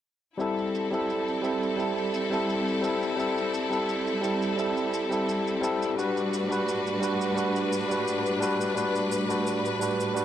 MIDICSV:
0, 0, Header, 1, 4, 480
1, 0, Start_track
1, 0, Tempo, 697674
1, 271, Time_signature, 4, 2, 24, 8
1, 7051, End_track
2, 0, Start_track
2, 0, Title_t, "String section"
2, 0, Program_c, 0, 48
2, 270, Note_on_c, 0, 55, 64
2, 270, Note_on_c, 0, 64, 57
2, 270, Note_on_c, 0, 69, 71
2, 272, Note_on_c, 0, 60, 56
2, 4083, Note_off_c, 0, 64, 0
2, 4083, Note_off_c, 0, 69, 0
2, 4084, Note_off_c, 0, 60, 0
2, 4110, Note_on_c, 0, 62, 61
2, 4111, Note_on_c, 0, 66, 56
2, 4112, Note_on_c, 0, 71, 75
2, 4113, Note_on_c, 0, 45, 64
2, 6012, Note_off_c, 0, 66, 0
2, 7051, Note_off_c, 0, 45, 0
2, 7051, Note_off_c, 0, 55, 0
2, 7051, Note_off_c, 0, 62, 0
2, 7051, Note_off_c, 0, 71, 0
2, 7051, End_track
3, 0, Start_track
3, 0, Title_t, "Tine electric piano"
3, 0, Program_c, 1, 4
3, 258, Note_on_c, 1, 55, 70
3, 267, Note_on_c, 1, 60, 66
3, 275, Note_on_c, 1, 64, 66
3, 284, Note_on_c, 1, 69, 75
3, 601, Note_off_c, 1, 55, 0
3, 605, Note_off_c, 1, 60, 0
3, 609, Note_off_c, 1, 64, 0
3, 613, Note_off_c, 1, 69, 0
3, 624, Note_on_c, 1, 55, 65
3, 631, Note_on_c, 1, 60, 58
3, 639, Note_on_c, 1, 64, 57
3, 647, Note_on_c, 1, 69, 72
3, 957, Note_off_c, 1, 55, 0
3, 961, Note_off_c, 1, 60, 0
3, 965, Note_off_c, 1, 64, 0
3, 969, Note_off_c, 1, 69, 0
3, 974, Note_on_c, 1, 55, 66
3, 984, Note_on_c, 1, 60, 62
3, 992, Note_on_c, 1, 64, 63
3, 1001, Note_on_c, 1, 69, 66
3, 1195, Note_off_c, 1, 55, 0
3, 1200, Note_off_c, 1, 60, 0
3, 1204, Note_off_c, 1, 64, 0
3, 1209, Note_off_c, 1, 69, 0
3, 1214, Note_on_c, 1, 55, 63
3, 1223, Note_on_c, 1, 60, 58
3, 1231, Note_on_c, 1, 64, 58
3, 1240, Note_on_c, 1, 69, 68
3, 1559, Note_off_c, 1, 55, 0
3, 1563, Note_off_c, 1, 60, 0
3, 1567, Note_off_c, 1, 64, 0
3, 1572, Note_off_c, 1, 69, 0
3, 1582, Note_on_c, 1, 55, 67
3, 1590, Note_on_c, 1, 60, 59
3, 1599, Note_on_c, 1, 64, 66
3, 1608, Note_on_c, 1, 69, 74
3, 1916, Note_off_c, 1, 55, 0
3, 1920, Note_off_c, 1, 60, 0
3, 1924, Note_off_c, 1, 64, 0
3, 1929, Note_off_c, 1, 69, 0
3, 1934, Note_on_c, 1, 55, 77
3, 1942, Note_on_c, 1, 60, 71
3, 1952, Note_on_c, 1, 64, 71
3, 1960, Note_on_c, 1, 69, 79
3, 2155, Note_off_c, 1, 55, 0
3, 2159, Note_off_c, 1, 60, 0
3, 2164, Note_off_c, 1, 64, 0
3, 2168, Note_off_c, 1, 69, 0
3, 2175, Note_on_c, 1, 55, 70
3, 2183, Note_on_c, 1, 60, 62
3, 2192, Note_on_c, 1, 64, 63
3, 2201, Note_on_c, 1, 69, 78
3, 2519, Note_off_c, 1, 55, 0
3, 2523, Note_off_c, 1, 60, 0
3, 2528, Note_off_c, 1, 64, 0
3, 2532, Note_off_c, 1, 69, 0
3, 2541, Note_on_c, 1, 55, 64
3, 2551, Note_on_c, 1, 60, 59
3, 2559, Note_on_c, 1, 64, 60
3, 2568, Note_on_c, 1, 69, 74
3, 2876, Note_off_c, 1, 55, 0
3, 2881, Note_off_c, 1, 60, 0
3, 2884, Note_off_c, 1, 64, 0
3, 2889, Note_off_c, 1, 69, 0
3, 2896, Note_on_c, 1, 55, 68
3, 2905, Note_on_c, 1, 60, 62
3, 2914, Note_on_c, 1, 64, 59
3, 2923, Note_on_c, 1, 69, 70
3, 3117, Note_off_c, 1, 55, 0
3, 3121, Note_off_c, 1, 60, 0
3, 3125, Note_off_c, 1, 64, 0
3, 3130, Note_off_c, 1, 69, 0
3, 3137, Note_on_c, 1, 55, 66
3, 3147, Note_on_c, 1, 60, 61
3, 3155, Note_on_c, 1, 64, 62
3, 3163, Note_on_c, 1, 69, 71
3, 3480, Note_off_c, 1, 55, 0
3, 3485, Note_off_c, 1, 60, 0
3, 3489, Note_off_c, 1, 64, 0
3, 3493, Note_off_c, 1, 69, 0
3, 3504, Note_on_c, 1, 55, 66
3, 3513, Note_on_c, 1, 60, 62
3, 3521, Note_on_c, 1, 64, 63
3, 3531, Note_on_c, 1, 69, 71
3, 3837, Note_off_c, 1, 55, 0
3, 3842, Note_off_c, 1, 60, 0
3, 3846, Note_off_c, 1, 64, 0
3, 3850, Note_off_c, 1, 69, 0
3, 3856, Note_on_c, 1, 55, 75
3, 3865, Note_on_c, 1, 60, 74
3, 3874, Note_on_c, 1, 64, 69
3, 3882, Note_on_c, 1, 69, 90
3, 4076, Note_off_c, 1, 55, 0
3, 4081, Note_off_c, 1, 60, 0
3, 4085, Note_off_c, 1, 64, 0
3, 4089, Note_off_c, 1, 69, 0
3, 4097, Note_on_c, 1, 55, 67
3, 4107, Note_on_c, 1, 62, 61
3, 4115, Note_on_c, 1, 66, 65
3, 4124, Note_on_c, 1, 71, 76
3, 4440, Note_off_c, 1, 55, 0
3, 4445, Note_off_c, 1, 62, 0
3, 4449, Note_off_c, 1, 66, 0
3, 4453, Note_off_c, 1, 71, 0
3, 4463, Note_on_c, 1, 55, 66
3, 4471, Note_on_c, 1, 62, 62
3, 4479, Note_on_c, 1, 66, 63
3, 4489, Note_on_c, 1, 71, 75
3, 4797, Note_off_c, 1, 55, 0
3, 4801, Note_off_c, 1, 62, 0
3, 4805, Note_off_c, 1, 66, 0
3, 4810, Note_off_c, 1, 71, 0
3, 4816, Note_on_c, 1, 55, 71
3, 4826, Note_on_c, 1, 62, 61
3, 4834, Note_on_c, 1, 66, 61
3, 4842, Note_on_c, 1, 71, 73
3, 5036, Note_off_c, 1, 55, 0
3, 5041, Note_off_c, 1, 62, 0
3, 5045, Note_off_c, 1, 66, 0
3, 5049, Note_off_c, 1, 71, 0
3, 5056, Note_on_c, 1, 55, 65
3, 5065, Note_on_c, 1, 62, 60
3, 5073, Note_on_c, 1, 66, 64
3, 5082, Note_on_c, 1, 71, 74
3, 5400, Note_off_c, 1, 55, 0
3, 5404, Note_off_c, 1, 62, 0
3, 5408, Note_off_c, 1, 66, 0
3, 5412, Note_off_c, 1, 71, 0
3, 5423, Note_on_c, 1, 55, 71
3, 5431, Note_on_c, 1, 62, 62
3, 5440, Note_on_c, 1, 66, 59
3, 5449, Note_on_c, 1, 71, 74
3, 5757, Note_off_c, 1, 55, 0
3, 5760, Note_off_c, 1, 62, 0
3, 5765, Note_off_c, 1, 66, 0
3, 5769, Note_off_c, 1, 71, 0
3, 5776, Note_on_c, 1, 55, 77
3, 5784, Note_on_c, 1, 62, 76
3, 5794, Note_on_c, 1, 66, 69
3, 5801, Note_on_c, 1, 71, 92
3, 5996, Note_off_c, 1, 55, 0
3, 6000, Note_off_c, 1, 62, 0
3, 6005, Note_off_c, 1, 66, 0
3, 6009, Note_off_c, 1, 71, 0
3, 6016, Note_on_c, 1, 55, 69
3, 6024, Note_on_c, 1, 62, 67
3, 6033, Note_on_c, 1, 66, 61
3, 6041, Note_on_c, 1, 71, 78
3, 6359, Note_off_c, 1, 55, 0
3, 6363, Note_off_c, 1, 62, 0
3, 6368, Note_off_c, 1, 66, 0
3, 6372, Note_off_c, 1, 71, 0
3, 6384, Note_on_c, 1, 55, 67
3, 6392, Note_on_c, 1, 62, 62
3, 6400, Note_on_c, 1, 66, 63
3, 6408, Note_on_c, 1, 71, 72
3, 6717, Note_off_c, 1, 55, 0
3, 6721, Note_off_c, 1, 62, 0
3, 6725, Note_off_c, 1, 66, 0
3, 6729, Note_off_c, 1, 71, 0
3, 6737, Note_on_c, 1, 55, 64
3, 6747, Note_on_c, 1, 62, 62
3, 6755, Note_on_c, 1, 66, 61
3, 6764, Note_on_c, 1, 71, 73
3, 6957, Note_off_c, 1, 55, 0
3, 6962, Note_off_c, 1, 62, 0
3, 6966, Note_off_c, 1, 66, 0
3, 6970, Note_off_c, 1, 71, 0
3, 6973, Note_on_c, 1, 55, 64
3, 6982, Note_on_c, 1, 62, 58
3, 6991, Note_on_c, 1, 66, 61
3, 7000, Note_on_c, 1, 71, 76
3, 7051, Note_off_c, 1, 55, 0
3, 7051, Note_off_c, 1, 62, 0
3, 7051, Note_off_c, 1, 66, 0
3, 7051, Note_off_c, 1, 71, 0
3, 7051, End_track
4, 0, Start_track
4, 0, Title_t, "Drums"
4, 275, Note_on_c, 9, 82, 37
4, 344, Note_off_c, 9, 82, 0
4, 402, Note_on_c, 9, 82, 18
4, 471, Note_off_c, 9, 82, 0
4, 515, Note_on_c, 9, 82, 67
4, 584, Note_off_c, 9, 82, 0
4, 640, Note_on_c, 9, 82, 29
4, 709, Note_off_c, 9, 82, 0
4, 756, Note_on_c, 9, 82, 37
4, 825, Note_off_c, 9, 82, 0
4, 881, Note_on_c, 9, 82, 19
4, 950, Note_off_c, 9, 82, 0
4, 994, Note_on_c, 9, 82, 61
4, 1063, Note_off_c, 9, 82, 0
4, 1121, Note_on_c, 9, 82, 28
4, 1190, Note_off_c, 9, 82, 0
4, 1234, Note_on_c, 9, 82, 38
4, 1303, Note_off_c, 9, 82, 0
4, 1360, Note_on_c, 9, 82, 19
4, 1429, Note_off_c, 9, 82, 0
4, 1473, Note_on_c, 9, 82, 64
4, 1542, Note_off_c, 9, 82, 0
4, 1602, Note_on_c, 9, 82, 27
4, 1671, Note_off_c, 9, 82, 0
4, 1716, Note_on_c, 9, 82, 38
4, 1785, Note_off_c, 9, 82, 0
4, 1844, Note_on_c, 9, 82, 18
4, 1913, Note_off_c, 9, 82, 0
4, 1954, Note_on_c, 9, 82, 69
4, 2023, Note_off_c, 9, 82, 0
4, 2083, Note_on_c, 9, 82, 28
4, 2151, Note_off_c, 9, 82, 0
4, 2199, Note_on_c, 9, 82, 39
4, 2267, Note_off_c, 9, 82, 0
4, 2325, Note_on_c, 9, 82, 20
4, 2394, Note_off_c, 9, 82, 0
4, 2436, Note_on_c, 9, 82, 73
4, 2505, Note_off_c, 9, 82, 0
4, 2563, Note_on_c, 9, 82, 29
4, 2632, Note_off_c, 9, 82, 0
4, 2676, Note_on_c, 9, 82, 38
4, 2745, Note_off_c, 9, 82, 0
4, 2802, Note_on_c, 9, 82, 20
4, 2871, Note_off_c, 9, 82, 0
4, 2916, Note_on_c, 9, 82, 69
4, 2985, Note_off_c, 9, 82, 0
4, 3043, Note_on_c, 9, 82, 31
4, 3111, Note_off_c, 9, 82, 0
4, 3156, Note_on_c, 9, 82, 39
4, 3225, Note_off_c, 9, 82, 0
4, 3284, Note_on_c, 9, 82, 19
4, 3352, Note_off_c, 9, 82, 0
4, 3397, Note_on_c, 9, 82, 63
4, 3466, Note_off_c, 9, 82, 0
4, 3523, Note_on_c, 9, 82, 31
4, 3592, Note_off_c, 9, 82, 0
4, 3639, Note_on_c, 9, 82, 40
4, 3708, Note_off_c, 9, 82, 0
4, 3766, Note_on_c, 9, 82, 18
4, 3835, Note_off_c, 9, 82, 0
4, 3879, Note_on_c, 9, 82, 73
4, 3948, Note_off_c, 9, 82, 0
4, 4007, Note_on_c, 9, 82, 29
4, 4076, Note_off_c, 9, 82, 0
4, 4121, Note_on_c, 9, 82, 39
4, 4190, Note_off_c, 9, 82, 0
4, 4247, Note_on_c, 9, 82, 19
4, 4315, Note_off_c, 9, 82, 0
4, 4360, Note_on_c, 9, 82, 75
4, 4429, Note_off_c, 9, 82, 0
4, 4486, Note_on_c, 9, 82, 30
4, 4555, Note_off_c, 9, 82, 0
4, 4599, Note_on_c, 9, 82, 42
4, 4668, Note_off_c, 9, 82, 0
4, 4725, Note_on_c, 9, 82, 20
4, 4794, Note_off_c, 9, 82, 0
4, 4837, Note_on_c, 9, 82, 64
4, 4905, Note_off_c, 9, 82, 0
4, 4962, Note_on_c, 9, 82, 33
4, 5031, Note_off_c, 9, 82, 0
4, 5075, Note_on_c, 9, 82, 40
4, 5144, Note_off_c, 9, 82, 0
4, 5201, Note_on_c, 9, 82, 21
4, 5269, Note_off_c, 9, 82, 0
4, 5316, Note_on_c, 9, 82, 73
4, 5385, Note_off_c, 9, 82, 0
4, 5444, Note_on_c, 9, 82, 29
4, 5513, Note_off_c, 9, 82, 0
4, 5557, Note_on_c, 9, 82, 41
4, 5626, Note_off_c, 9, 82, 0
4, 5684, Note_on_c, 9, 82, 18
4, 5752, Note_off_c, 9, 82, 0
4, 5797, Note_on_c, 9, 82, 66
4, 5866, Note_off_c, 9, 82, 0
4, 5924, Note_on_c, 9, 82, 33
4, 5993, Note_off_c, 9, 82, 0
4, 6036, Note_on_c, 9, 82, 38
4, 6104, Note_off_c, 9, 82, 0
4, 6161, Note_on_c, 9, 82, 19
4, 6230, Note_off_c, 9, 82, 0
4, 6274, Note_on_c, 9, 82, 74
4, 6343, Note_off_c, 9, 82, 0
4, 6401, Note_on_c, 9, 82, 29
4, 6469, Note_off_c, 9, 82, 0
4, 6515, Note_on_c, 9, 82, 38
4, 6584, Note_off_c, 9, 82, 0
4, 6643, Note_on_c, 9, 82, 19
4, 6712, Note_off_c, 9, 82, 0
4, 6755, Note_on_c, 9, 82, 67
4, 6824, Note_off_c, 9, 82, 0
4, 6882, Note_on_c, 9, 82, 32
4, 6951, Note_off_c, 9, 82, 0
4, 6996, Note_on_c, 9, 82, 40
4, 7051, Note_off_c, 9, 82, 0
4, 7051, End_track
0, 0, End_of_file